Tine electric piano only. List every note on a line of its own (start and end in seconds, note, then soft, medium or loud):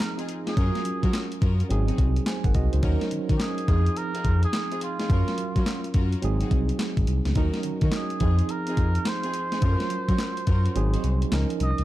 0.00 0.53 F3 medium
0.00 0.54 C4 medium
0.00 0.54 D#4 medium
0.00 0.55 G#4 medium
0.56 1.67 F#3 medium
0.56 1.68 C#4 medium
0.56 1.68 F4 medium
0.56 1.68 A#4 medium
1.69 2.80 F#3 medium
1.69 2.81 C4 medium
1.69 2.26 D#4 medium
1.69 2.26 G#4 medium
2.27 2.44 C5 medium
2.27 2.44 G#5 medium
2.45 2.55 A#4 medium
2.45 2.54 F#5 medium
2.55 2.72 F#4 medium
2.55 2.72 D#5 medium
2.73 2.82 D#4 medium
2.73 3.00 C5 medium
2.83 3.68 F#3 medium
2.83 3.68 C#4 medium
2.83 3.67 D#4 medium
2.83 3.68 A#4 medium
3.67 5.06 F3 medium
3.67 5.07 C4 medium
3.67 5.07 D#4 medium
3.67 5.07 G#4 medium
5.09 6.20 F#3 medium
5.09 6.20 C#4 medium
5.09 6.21 F4 medium
5.09 6.21 A#4 medium
6.22 7.33 F#3 medium
6.22 7.34 C4 medium
6.22 7.34 D#4 medium
6.22 7.35 G#4 medium
7.36 8.21 F#3 medium
7.36 8.21 C#4 medium
7.36 8.21 D#4 medium
7.36 8.22 A#4 medium
8.20 9.59 F3 medium
8.20 9.59 C4 medium
8.20 9.60 D#4 medium
8.20 9.60 G#4 medium
9.62 10.73 F#3 medium
9.62 10.73 C#4 medium
9.62 10.74 F4 medium
9.62 9.71 A4 medium
9.71 10.77 A#4 medium
10.76 11.32 F#3 medium
10.76 11.32 C4 medium
10.76 11.32 D#4 medium
10.76 11.33 G#4 medium
11.32 11.84 F3 medium
11.32 11.84 C#4 medium
11.32 11.84 D#4 medium
11.32 11.84 A#4 medium